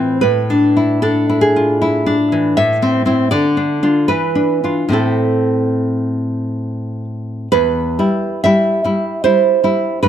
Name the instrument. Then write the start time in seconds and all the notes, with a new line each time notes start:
nylon-string guitar
Already playing: A2 E3 C4 E4 F4 C5
0.21 A2 B4
0.50 D4
0.77 E4
1.02 D4 A4
1.29 E4
1.41 G#4
1.56 F4
1.82 E4
2.06 D4
2.32 E3
2.57 A2 E5
2.82 C4
3.06 C4 E4
3.31 D3 D5
3.57 D4
3.83 D4 F4
4.08 E3 B4
4.35 D4
4.64 D4 F4
4.89 A2 C4 E4
4.93 A4
7.52 E2 B4
7.99 G3 E4
8.44 G3 E4 E5
8.84 G3 E4
9.24 G3 E4 C5
9.64 G3 E4
10.03 G2 B4